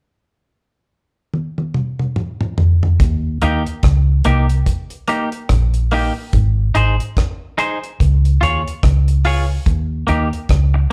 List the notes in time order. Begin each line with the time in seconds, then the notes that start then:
1.34 high tom
1.58 high tom
1.74 mid tom
1.99 mid tom
2.16 mid tom
2.41 mid tom
2.58 floor tom
2.83 floor tom
3.00 D#2, kick, closed hi-hat
3.42 D#2 A#3 D#4 G4, closed hi-hat
3.66 closed hi-hat
3.83 C#2, kick, cross-stick, closed hi-hat
4.24 C2 A#3 D#4 G4, closed hi-hat
4.49 closed hi-hat
4.66 kick, closed hi-hat
4.90 closed hi-hat
5.08 A#3 D#4 G4, closed hi-hat
5.32 closed hi-hat
5.49 A#1, kick, cross-stick, closed hi-hat
5.74 closed hi-hat
5.91 A#3 D#4 G4, open hi-hat
6.33 G#1, kick, closed hi-hat
6.75 G#1 D#4 G#4 C5, closed hi-hat
7.00 closed hi-hat
7.17 kick, cross-stick, closed hi-hat
7.58 D#4 G#4 C5, closed hi-hat
7.84 closed hi-hat
8.00 C#2, kick, closed hi-hat
8.25 closed hi-hat
8.41 D#2 F4 G#4 C#5, closed hi-hat
8.67 closed hi-hat
8.83 C#2, kick, cross-stick, closed hi-hat
9.08 closed hi-hat
9.25 F4 G#4 C#5, open hi-hat
9.66 D#2, kick, closed hi-hat
10.07 D#2 A#3 D#4 G4, closed hi-hat
10.33 closed hi-hat
10.49 C#2, kick, cross-stick, closed hi-hat
10.74 muted clean electric guitar stroke